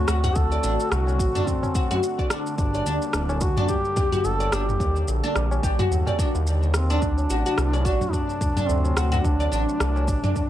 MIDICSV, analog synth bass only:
0, 0, Header, 1, 2, 480
1, 0, Start_track
1, 0, Tempo, 555556
1, 308, Time_signature, 4, 2, 24, 8
1, 9069, End_track
2, 0, Start_track
2, 0, Title_t, "Analog synth bass"
2, 0, Program_c, 0, 38
2, 69, Note_on_c, 0, 38, 86
2, 272, Note_off_c, 0, 38, 0
2, 309, Note_on_c, 0, 38, 95
2, 512, Note_off_c, 0, 38, 0
2, 551, Note_on_c, 0, 33, 97
2, 662, Note_off_c, 0, 33, 0
2, 790, Note_on_c, 0, 36, 109
2, 1029, Note_on_c, 0, 33, 78
2, 1042, Note_off_c, 0, 36, 0
2, 1141, Note_off_c, 0, 33, 0
2, 1647, Note_on_c, 0, 42, 114
2, 1731, Note_off_c, 0, 42, 0
2, 2229, Note_on_c, 0, 31, 101
2, 2432, Note_off_c, 0, 31, 0
2, 2468, Note_on_c, 0, 38, 86
2, 2581, Note_off_c, 0, 38, 0
2, 2705, Note_on_c, 0, 26, 101
2, 2949, Note_on_c, 0, 38, 81
2, 2962, Note_off_c, 0, 26, 0
2, 3061, Note_off_c, 0, 38, 0
2, 3667, Note_on_c, 0, 31, 81
2, 3871, Note_off_c, 0, 31, 0
2, 3905, Note_on_c, 0, 31, 81
2, 4110, Note_off_c, 0, 31, 0
2, 4145, Note_on_c, 0, 39, 95
2, 4350, Note_off_c, 0, 39, 0
2, 4389, Note_on_c, 0, 34, 95
2, 4501, Note_off_c, 0, 34, 0
2, 4626, Note_on_c, 0, 34, 104
2, 4830, Note_off_c, 0, 34, 0
2, 4864, Note_on_c, 0, 34, 78
2, 4978, Note_off_c, 0, 34, 0
2, 5102, Note_on_c, 0, 39, 83
2, 5218, Note_off_c, 0, 39, 0
2, 5482, Note_on_c, 0, 39, 112
2, 6037, Note_off_c, 0, 39, 0
2, 6065, Note_on_c, 0, 38, 97
2, 6270, Note_off_c, 0, 38, 0
2, 6304, Note_on_c, 0, 33, 91
2, 6418, Note_off_c, 0, 33, 0
2, 6546, Note_on_c, 0, 36, 109
2, 6782, Note_on_c, 0, 33, 77
2, 6795, Note_off_c, 0, 36, 0
2, 6898, Note_off_c, 0, 33, 0
2, 7506, Note_on_c, 0, 38, 81
2, 7710, Note_off_c, 0, 38, 0
2, 7745, Note_on_c, 0, 38, 86
2, 7950, Note_off_c, 0, 38, 0
2, 7984, Note_on_c, 0, 38, 100
2, 8189, Note_off_c, 0, 38, 0
2, 8226, Note_on_c, 0, 33, 94
2, 8340, Note_off_c, 0, 33, 0
2, 8467, Note_on_c, 0, 36, 103
2, 8707, Note_on_c, 0, 33, 83
2, 8719, Note_off_c, 0, 36, 0
2, 8820, Note_off_c, 0, 33, 0
2, 9069, End_track
0, 0, End_of_file